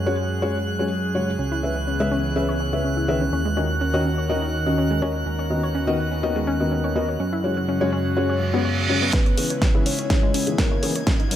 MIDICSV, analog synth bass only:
0, 0, Header, 1, 2, 480
1, 0, Start_track
1, 0, Tempo, 483871
1, 1380, Time_signature, 4, 2, 24, 8
1, 11268, End_track
2, 0, Start_track
2, 0, Title_t, "Analog synth bass"
2, 0, Program_c, 0, 38
2, 0, Note_on_c, 0, 42, 93
2, 1357, Note_off_c, 0, 42, 0
2, 1379, Note_on_c, 0, 37, 92
2, 3277, Note_off_c, 0, 37, 0
2, 3301, Note_on_c, 0, 39, 90
2, 5198, Note_off_c, 0, 39, 0
2, 5220, Note_on_c, 0, 39, 91
2, 7117, Note_off_c, 0, 39, 0
2, 7140, Note_on_c, 0, 42, 93
2, 9038, Note_off_c, 0, 42, 0
2, 9060, Note_on_c, 0, 37, 99
2, 9160, Note_off_c, 0, 37, 0
2, 9426, Note_on_c, 0, 37, 101
2, 9516, Note_off_c, 0, 37, 0
2, 9780, Note_on_c, 0, 32, 89
2, 10104, Note_off_c, 0, 32, 0
2, 10147, Note_on_c, 0, 37, 97
2, 10462, Note_off_c, 0, 37, 0
2, 10627, Note_on_c, 0, 37, 105
2, 10942, Note_off_c, 0, 37, 0
2, 10979, Note_on_c, 0, 39, 106
2, 11079, Note_off_c, 0, 39, 0
2, 11268, End_track
0, 0, End_of_file